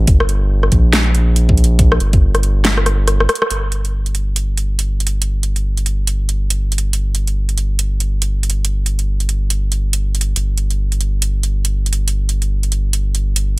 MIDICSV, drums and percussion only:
0, 0, Header, 1, 2, 480
1, 0, Start_track
1, 0, Key_signature, -2, "minor"
1, 0, Tempo, 428571
1, 85, Time_signature, 4, 2, 24, 8
1, 15222, End_track
2, 0, Start_track
2, 0, Title_t, "Drums"
2, 83, Note_on_c, 9, 42, 72
2, 84, Note_on_c, 9, 36, 110
2, 195, Note_off_c, 9, 42, 0
2, 196, Note_off_c, 9, 36, 0
2, 226, Note_on_c, 9, 37, 80
2, 323, Note_on_c, 9, 42, 54
2, 338, Note_off_c, 9, 37, 0
2, 435, Note_off_c, 9, 42, 0
2, 707, Note_on_c, 9, 37, 54
2, 804, Note_on_c, 9, 36, 59
2, 804, Note_on_c, 9, 42, 54
2, 819, Note_off_c, 9, 37, 0
2, 916, Note_off_c, 9, 36, 0
2, 916, Note_off_c, 9, 42, 0
2, 1044, Note_on_c, 9, 38, 120
2, 1044, Note_on_c, 9, 42, 81
2, 1156, Note_off_c, 9, 38, 0
2, 1156, Note_off_c, 9, 42, 0
2, 1284, Note_on_c, 9, 42, 53
2, 1396, Note_off_c, 9, 42, 0
2, 1525, Note_on_c, 9, 42, 76
2, 1637, Note_off_c, 9, 42, 0
2, 1668, Note_on_c, 9, 36, 99
2, 1764, Note_on_c, 9, 42, 44
2, 1780, Note_off_c, 9, 36, 0
2, 1836, Note_off_c, 9, 42, 0
2, 1836, Note_on_c, 9, 42, 59
2, 1948, Note_off_c, 9, 42, 0
2, 2004, Note_on_c, 9, 42, 81
2, 2005, Note_on_c, 9, 36, 116
2, 2116, Note_off_c, 9, 42, 0
2, 2117, Note_off_c, 9, 36, 0
2, 2147, Note_on_c, 9, 37, 81
2, 2244, Note_on_c, 9, 42, 52
2, 2259, Note_off_c, 9, 37, 0
2, 2356, Note_off_c, 9, 42, 0
2, 2387, Note_on_c, 9, 42, 38
2, 2388, Note_on_c, 9, 36, 101
2, 2499, Note_off_c, 9, 42, 0
2, 2500, Note_off_c, 9, 36, 0
2, 2628, Note_on_c, 9, 37, 54
2, 2628, Note_on_c, 9, 42, 38
2, 2724, Note_off_c, 9, 42, 0
2, 2724, Note_on_c, 9, 42, 53
2, 2740, Note_off_c, 9, 37, 0
2, 2836, Note_off_c, 9, 42, 0
2, 2964, Note_on_c, 9, 38, 117
2, 2964, Note_on_c, 9, 42, 85
2, 3076, Note_off_c, 9, 38, 0
2, 3076, Note_off_c, 9, 42, 0
2, 3108, Note_on_c, 9, 37, 64
2, 3205, Note_off_c, 9, 37, 0
2, 3205, Note_on_c, 9, 37, 66
2, 3205, Note_on_c, 9, 42, 57
2, 3317, Note_off_c, 9, 37, 0
2, 3317, Note_off_c, 9, 42, 0
2, 3444, Note_on_c, 9, 37, 62
2, 3444, Note_on_c, 9, 42, 83
2, 3556, Note_off_c, 9, 37, 0
2, 3556, Note_off_c, 9, 42, 0
2, 3588, Note_on_c, 9, 37, 66
2, 3685, Note_off_c, 9, 37, 0
2, 3685, Note_on_c, 9, 37, 81
2, 3685, Note_on_c, 9, 42, 48
2, 3757, Note_off_c, 9, 42, 0
2, 3757, Note_on_c, 9, 42, 63
2, 3797, Note_off_c, 9, 37, 0
2, 3828, Note_on_c, 9, 37, 85
2, 3869, Note_off_c, 9, 42, 0
2, 3925, Note_on_c, 9, 42, 79
2, 3940, Note_off_c, 9, 37, 0
2, 4037, Note_off_c, 9, 42, 0
2, 4165, Note_on_c, 9, 42, 51
2, 4277, Note_off_c, 9, 42, 0
2, 4309, Note_on_c, 9, 42, 36
2, 4421, Note_off_c, 9, 42, 0
2, 4548, Note_on_c, 9, 42, 35
2, 4645, Note_off_c, 9, 42, 0
2, 4645, Note_on_c, 9, 42, 53
2, 4757, Note_off_c, 9, 42, 0
2, 4884, Note_on_c, 9, 42, 80
2, 4996, Note_off_c, 9, 42, 0
2, 5124, Note_on_c, 9, 42, 52
2, 5236, Note_off_c, 9, 42, 0
2, 5363, Note_on_c, 9, 42, 79
2, 5475, Note_off_c, 9, 42, 0
2, 5603, Note_on_c, 9, 42, 49
2, 5675, Note_off_c, 9, 42, 0
2, 5675, Note_on_c, 9, 42, 62
2, 5787, Note_off_c, 9, 42, 0
2, 5842, Note_on_c, 9, 42, 79
2, 5954, Note_off_c, 9, 42, 0
2, 6083, Note_on_c, 9, 42, 52
2, 6195, Note_off_c, 9, 42, 0
2, 6228, Note_on_c, 9, 42, 37
2, 6340, Note_off_c, 9, 42, 0
2, 6467, Note_on_c, 9, 42, 35
2, 6563, Note_off_c, 9, 42, 0
2, 6563, Note_on_c, 9, 42, 53
2, 6675, Note_off_c, 9, 42, 0
2, 6803, Note_on_c, 9, 42, 79
2, 6915, Note_off_c, 9, 42, 0
2, 7043, Note_on_c, 9, 42, 55
2, 7155, Note_off_c, 9, 42, 0
2, 7284, Note_on_c, 9, 42, 78
2, 7396, Note_off_c, 9, 42, 0
2, 7525, Note_on_c, 9, 42, 47
2, 7595, Note_off_c, 9, 42, 0
2, 7595, Note_on_c, 9, 42, 61
2, 7707, Note_off_c, 9, 42, 0
2, 7764, Note_on_c, 9, 42, 74
2, 7876, Note_off_c, 9, 42, 0
2, 8004, Note_on_c, 9, 42, 51
2, 8116, Note_off_c, 9, 42, 0
2, 8148, Note_on_c, 9, 42, 37
2, 8260, Note_off_c, 9, 42, 0
2, 8387, Note_on_c, 9, 42, 34
2, 8484, Note_off_c, 9, 42, 0
2, 8484, Note_on_c, 9, 42, 53
2, 8596, Note_off_c, 9, 42, 0
2, 8724, Note_on_c, 9, 42, 75
2, 8836, Note_off_c, 9, 42, 0
2, 8964, Note_on_c, 9, 42, 52
2, 9076, Note_off_c, 9, 42, 0
2, 9204, Note_on_c, 9, 42, 74
2, 9316, Note_off_c, 9, 42, 0
2, 9444, Note_on_c, 9, 42, 44
2, 9516, Note_off_c, 9, 42, 0
2, 9516, Note_on_c, 9, 42, 60
2, 9628, Note_off_c, 9, 42, 0
2, 9684, Note_on_c, 9, 42, 70
2, 9796, Note_off_c, 9, 42, 0
2, 9924, Note_on_c, 9, 42, 48
2, 10036, Note_off_c, 9, 42, 0
2, 10067, Note_on_c, 9, 42, 35
2, 10179, Note_off_c, 9, 42, 0
2, 10307, Note_on_c, 9, 42, 34
2, 10404, Note_off_c, 9, 42, 0
2, 10404, Note_on_c, 9, 42, 50
2, 10516, Note_off_c, 9, 42, 0
2, 10643, Note_on_c, 9, 42, 74
2, 10755, Note_off_c, 9, 42, 0
2, 10883, Note_on_c, 9, 42, 49
2, 10995, Note_off_c, 9, 42, 0
2, 11123, Note_on_c, 9, 42, 75
2, 11235, Note_off_c, 9, 42, 0
2, 11364, Note_on_c, 9, 42, 46
2, 11436, Note_off_c, 9, 42, 0
2, 11436, Note_on_c, 9, 42, 58
2, 11548, Note_off_c, 9, 42, 0
2, 11604, Note_on_c, 9, 42, 71
2, 11716, Note_off_c, 9, 42, 0
2, 11845, Note_on_c, 9, 42, 46
2, 11957, Note_off_c, 9, 42, 0
2, 11989, Note_on_c, 9, 42, 33
2, 12101, Note_off_c, 9, 42, 0
2, 12230, Note_on_c, 9, 42, 32
2, 12326, Note_off_c, 9, 42, 0
2, 12326, Note_on_c, 9, 42, 49
2, 12438, Note_off_c, 9, 42, 0
2, 12566, Note_on_c, 9, 42, 74
2, 12678, Note_off_c, 9, 42, 0
2, 12806, Note_on_c, 9, 42, 47
2, 12918, Note_off_c, 9, 42, 0
2, 13045, Note_on_c, 9, 42, 69
2, 13157, Note_off_c, 9, 42, 0
2, 13285, Note_on_c, 9, 42, 43
2, 13358, Note_off_c, 9, 42, 0
2, 13358, Note_on_c, 9, 42, 56
2, 13470, Note_off_c, 9, 42, 0
2, 13526, Note_on_c, 9, 42, 67
2, 13638, Note_off_c, 9, 42, 0
2, 13765, Note_on_c, 9, 42, 48
2, 13877, Note_off_c, 9, 42, 0
2, 13909, Note_on_c, 9, 42, 34
2, 14021, Note_off_c, 9, 42, 0
2, 14149, Note_on_c, 9, 42, 34
2, 14245, Note_off_c, 9, 42, 0
2, 14245, Note_on_c, 9, 42, 48
2, 14357, Note_off_c, 9, 42, 0
2, 14485, Note_on_c, 9, 42, 76
2, 14597, Note_off_c, 9, 42, 0
2, 14724, Note_on_c, 9, 42, 48
2, 14836, Note_off_c, 9, 42, 0
2, 14964, Note_on_c, 9, 42, 73
2, 15076, Note_off_c, 9, 42, 0
2, 15222, End_track
0, 0, End_of_file